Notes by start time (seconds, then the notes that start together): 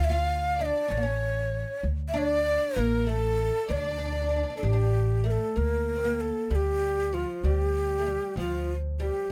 Already playing: D2
0.04 E5
0.08 F4 F5
0.57 D4 D5
0.61 D#5
0.66 D5
0.88 A1 C#4 C#5
0.97 A#3
1.03 C#4
1.83 D2
2.08 E5
2.13 D4 D5
2.18 D5
2.75 A1 A#3 A#4
3.07 A3 A4
3.68 D2 D4 D5
3.77 D4
3.84 D4
3.90 D4
3.98 D4
4.06 D4
4.12 D4
4.22 D4
4.29 D4
4.36 D4
4.43 D4
4.50 D4
4.57 D4 A4
4.63 A1 D4 G4
4.73 D4
5.24 A3 A#4
5.31 A4
5.56 D2 A#3 A#4
5.96 C4
6.05 A#3
6.21 A4
6.50 D2 G3 A4
6.55 G4
7.13 F3 F4
7.43 D2 G3 G4
7.99 A3
8.06 G3
8.36 D2 F3 F4
9.00 G3 G4